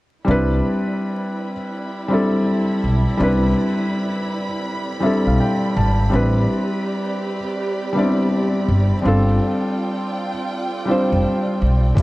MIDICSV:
0, 0, Header, 1, 5, 480
1, 0, Start_track
1, 0, Tempo, 731707
1, 173, Time_signature, 4, 2, 24, 8
1, 7886, End_track
2, 0, Start_track
2, 0, Title_t, "String section"
2, 0, Program_c, 0, 48
2, 174, Note_on_c, 0, 83, 79
2, 176, Note_on_c, 0, 64, 82
2, 177, Note_on_c, 0, 60, 68
2, 177, Note_on_c, 0, 74, 69
2, 3988, Note_off_c, 0, 64, 0
2, 4009, Note_on_c, 0, 67, 82
2, 5907, Note_off_c, 0, 83, 0
2, 5912, Note_off_c, 0, 67, 0
2, 5932, Note_on_c, 0, 79, 87
2, 5936, Note_on_c, 0, 65, 78
2, 7833, Note_off_c, 0, 79, 0
2, 7835, Note_off_c, 0, 65, 0
2, 7854, Note_on_c, 0, 83, 89
2, 7855, Note_on_c, 0, 64, 74
2, 7886, Note_off_c, 0, 60, 0
2, 7886, Note_off_c, 0, 64, 0
2, 7886, Note_off_c, 0, 74, 0
2, 7886, Note_off_c, 0, 83, 0
2, 7886, End_track
3, 0, Start_track
3, 0, Title_t, "Felt piano"
3, 0, Program_c, 1, 0
3, 161, Note_on_c, 1, 55, 88
3, 171, Note_on_c, 1, 60, 69
3, 180, Note_on_c, 1, 62, 76
3, 189, Note_on_c, 1, 64, 73
3, 201, Note_on_c, 1, 71, 98
3, 315, Control_c, 1, 64, 127
3, 989, Note_off_c, 1, 55, 0
3, 994, Note_off_c, 1, 60, 0
3, 999, Note_off_c, 1, 62, 0
3, 1003, Note_off_c, 1, 64, 0
3, 1009, Note_off_c, 1, 71, 0
3, 1366, Note_on_c, 1, 55, 86
3, 1374, Note_on_c, 1, 60, 74
3, 1384, Note_on_c, 1, 62, 71
3, 1395, Note_on_c, 1, 64, 70
3, 1402, Note_on_c, 1, 69, 82
3, 2004, Note_off_c, 1, 55, 0
3, 2008, Note_off_c, 1, 60, 0
3, 2013, Note_off_c, 1, 62, 0
3, 2018, Note_off_c, 1, 64, 0
3, 2022, Note_off_c, 1, 69, 0
3, 2082, Note_on_c, 1, 55, 87
3, 2092, Note_on_c, 1, 60, 76
3, 2101, Note_on_c, 1, 62, 79
3, 2110, Note_on_c, 1, 64, 77
3, 2120, Note_on_c, 1, 71, 99
3, 2910, Note_off_c, 1, 55, 0
3, 2915, Note_off_c, 1, 60, 0
3, 2919, Note_off_c, 1, 62, 0
3, 2924, Note_off_c, 1, 64, 0
3, 2929, Note_off_c, 1, 71, 0
3, 3282, Note_on_c, 1, 55, 85
3, 3290, Note_on_c, 1, 60, 78
3, 3298, Note_on_c, 1, 76, 73
3, 3301, Note_on_c, 1, 62, 74
3, 3310, Note_on_c, 1, 64, 75
3, 3318, Note_on_c, 1, 69, 85
3, 3440, Note_off_c, 1, 76, 0
3, 3455, Note_on_c, 1, 77, 67
3, 3531, Note_off_c, 1, 77, 0
3, 3544, Note_on_c, 1, 79, 72
3, 3762, Note_off_c, 1, 79, 0
3, 3781, Note_on_c, 1, 81, 71
3, 3922, Note_off_c, 1, 55, 0
3, 3926, Note_off_c, 1, 60, 0
3, 3931, Note_off_c, 1, 62, 0
3, 3936, Note_off_c, 1, 64, 0
3, 3940, Note_off_c, 1, 69, 0
3, 4001, Note_off_c, 1, 81, 0
3, 4001, Note_on_c, 1, 55, 83
3, 4009, Note_on_c, 1, 60, 83
3, 4020, Control_c, 1, 64, 0
3, 4021, Note_on_c, 1, 62, 75
3, 4027, Note_on_c, 1, 64, 76
3, 4037, Note_on_c, 1, 71, 93
3, 4151, Control_c, 1, 64, 127
3, 4829, Note_off_c, 1, 55, 0
3, 4833, Note_off_c, 1, 60, 0
3, 4839, Note_off_c, 1, 62, 0
3, 4842, Note_off_c, 1, 64, 0
3, 4848, Note_off_c, 1, 71, 0
3, 5200, Note_on_c, 1, 55, 86
3, 5211, Note_on_c, 1, 59, 58
3, 5220, Note_on_c, 1, 62, 78
3, 5230, Note_on_c, 1, 64, 72
3, 5239, Note_on_c, 1, 74, 90
3, 5252, Note_on_c, 1, 60, 76
3, 5267, Note_off_c, 1, 59, 0
3, 5841, Note_off_c, 1, 55, 0
3, 5851, Note_off_c, 1, 62, 0
3, 5856, Note_off_c, 1, 64, 0
3, 5860, Note_off_c, 1, 74, 0
3, 5867, Note_off_c, 1, 60, 0
3, 5917, Note_on_c, 1, 55, 75
3, 5925, Note_on_c, 1, 60, 77
3, 5935, Note_on_c, 1, 62, 82
3, 5942, Control_c, 1, 64, 0
3, 5944, Note_on_c, 1, 65, 83
3, 5953, Note_on_c, 1, 69, 93
3, 6061, Control_c, 1, 64, 127
3, 6747, Note_off_c, 1, 55, 0
3, 6751, Note_off_c, 1, 60, 0
3, 6756, Note_off_c, 1, 62, 0
3, 6761, Note_off_c, 1, 65, 0
3, 6765, Note_off_c, 1, 69, 0
3, 7121, Note_on_c, 1, 55, 77
3, 7131, Note_on_c, 1, 60, 74
3, 7141, Note_on_c, 1, 62, 73
3, 7150, Note_on_c, 1, 65, 72
3, 7158, Note_on_c, 1, 72, 89
3, 7761, Note_off_c, 1, 55, 0
3, 7766, Note_off_c, 1, 60, 0
3, 7771, Note_off_c, 1, 62, 0
3, 7776, Note_off_c, 1, 65, 0
3, 7780, Note_off_c, 1, 72, 0
3, 7841, Note_on_c, 1, 55, 82
3, 7849, Note_on_c, 1, 60, 72
3, 7859, Note_on_c, 1, 62, 74
3, 7862, Control_c, 1, 64, 0
3, 7886, Note_off_c, 1, 55, 0
3, 7886, Note_off_c, 1, 60, 0
3, 7886, Note_off_c, 1, 62, 0
3, 7886, End_track
4, 0, Start_track
4, 0, Title_t, "Upright bass"
4, 0, Program_c, 2, 32
4, 183, Note_on_c, 2, 36, 104
4, 389, Note_off_c, 2, 36, 0
4, 1862, Note_on_c, 2, 35, 83
4, 1994, Note_off_c, 2, 35, 0
4, 2102, Note_on_c, 2, 36, 107
4, 2308, Note_off_c, 2, 36, 0
4, 3454, Note_on_c, 2, 35, 84
4, 3526, Note_off_c, 2, 35, 0
4, 3782, Note_on_c, 2, 32, 99
4, 3988, Note_off_c, 2, 32, 0
4, 4024, Note_on_c, 2, 33, 99
4, 4229, Note_off_c, 2, 33, 0
4, 5697, Note_on_c, 2, 31, 93
4, 5831, Note_off_c, 2, 31, 0
4, 5939, Note_on_c, 2, 31, 101
4, 6146, Note_off_c, 2, 31, 0
4, 7296, Note_on_c, 2, 29, 88
4, 7367, Note_off_c, 2, 29, 0
4, 7620, Note_on_c, 2, 35, 90
4, 7827, Note_off_c, 2, 35, 0
4, 7856, Note_on_c, 2, 36, 105
4, 7886, Note_off_c, 2, 36, 0
4, 7886, End_track
5, 0, Start_track
5, 0, Title_t, "Drums"
5, 7851, Note_on_c, 9, 36, 106
5, 7860, Note_on_c, 9, 42, 84
5, 7886, Note_off_c, 9, 36, 0
5, 7886, Note_off_c, 9, 42, 0
5, 7886, End_track
0, 0, End_of_file